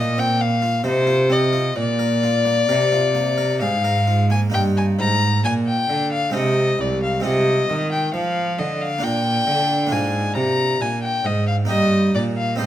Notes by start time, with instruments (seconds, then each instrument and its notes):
Already playing: harpsichord A#2 F4, cello A#2, violin D#5
0.18 harpsichord C4, violin G5
0.41 violin F5
0.62 harpsichord F4
0.84 harpsichord C3 D#4, cello C3, violin C5
1.07 harpsichord F4
1.30 harpsichord C4, violin D#5
1.53 harpsichord F4
1.76 harpsichord A#2, cello A#2, violin D5
1.99 harpsichord A#4
2.23 harpsichord F4
2.45 harpsichord A#3
2.69 harpsichord C3 A#4, cello C3
2.92 harpsichord F4
3.15 harpsichord A#3
3.38 harpsichord A#4
3.61 harpsichord G#2 G#4, cello G#2, violin F5
3.84 harpsichord A#4
4.07 harpsichord F4
4.30 harpsichord A#3, violin G#5
4.50 harpsichord G2 A#3 D#4, violin G5
4.54 cello G2
4.77 violin G#5
4.99 harpsichord G#2, cello G#2, violin A#5
5.44 cello A#2, harpsichord A#2, violin G#5
5.67 violin G5
5.89 cello D3, harpsichord D3
6.13 violin F5
6.30 harpsichord G#3 C4 D#4
6.34 harpsichord C3, cello C3, violin D#5
6.79 harpsichord C2, cello C2, violin D5
7.03 violin F5
7.20 harpsichord G#3 C4 F4
7.25 cello C3, harpsichord C3, violin D#5
7.70 harpsichord D#3, cello D#3
7.92 violin G5
8.14 harpsichord F3, cello F3, violin F5
8.59 harpsichord D3, cello D3, violin D#5
8.81 violin F5
8.99 harpsichord A#3 D4 F4
9.03 harpsichord A#2, cello A#2, violin G5
9.47 harpsichord D3, cello D3
9.87 harpsichord A#3 D4 F4
9.92 harpsichord G#2, cello G#2, violin G#5
10.35 harpsichord C3, cello C3, violin A#5
10.81 harpsichord A#2, cello A#2, violin G#5
11.03 violin G5
11.25 harpsichord G#2, cello G#2, violin D#5
11.47 violin F5
11.65 harpsichord A#3 D#4 G4
11.70 harpsichord G2, cello G2, violin D#5
12.15 harpsichord A#2, cello A#2, violin D5
12.37 violin F5
12.56 harpsichord C4 D#4 C5
12.60 cello G#2, harpsichord G#2, violin D#5